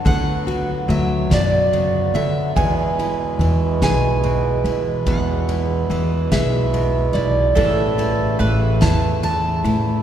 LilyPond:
<<
  \new Staff \with { instrumentName = "Steel-string acoustic guitar" } { \time 6/8 \key e \mixolydian \tempo 4. = 48 fis''4 e''8 d''4 e''8~ | e''4. gis''4. | fis''4. e''4 d''8 | e''4. a''8 a''4 | }
  \new Staff \with { instrumentName = "Mandolin" } { \time 6/8 \key e \mixolydian r2. | gis'2.~ | gis'2. | a'4 b'2 | }
  \new Staff \with { instrumentName = "Harmonium" } { \time 6/8 \key e \mixolydian fis'2. | e'2.~ | e'2.~ | e'2. | }
  \new Staff \with { instrumentName = "Harmonium" } { \clef bass \time 6/8 \key e \mixolydian <fis b>2. | <b, gis>2.~ | <b, gis>2. | <cis a>2. | }
  \new Staff \with { instrumentName = "Nylon-string guitar" } { \clef bass \time 6/8 \key e \mixolydian << { b8 fis'2~ fis'8 | b8 e'4 gis'4 e'8 | b8 e'4 gis'4 e'8 | <e cis' e'>8 e'4 e'4 e'8 | } \\ { d4 fis8 b,8 cis8 d8 | e,4 e4 b,4 | e,4 e4 b,4 | a,4 e4 e,4 | } >> }
  \new Staff \with { instrumentName = "Upright bass" } { \clef bass \time 6/8 \key e \mixolydian d,4 d,8 fis,4 d8 | e,4 e,8 b,,4 e8 | e,4 e,8 b,,4 b,,8 | a,,4 a,,8 e,4 a,8 | }
  \new DrumStaff \with { instrumentName = "Drums" } \drummode { \time 6/8 <bd cymr>8 cymr8 cymr8 <bd cymr sn>8 cymr8 cymr8 | <bd cymr>8 cymr8 cymr8 <bd cymr sn>8 cymr8 cymr8 | <bd cymr>8 cymr8 cymr8 <bd cymr sn>8 cymr8 cymr8 | <bd cymr>8 cymr8 cymr8 <bd cymr sn>8 cymr8 cymr8 | }
>>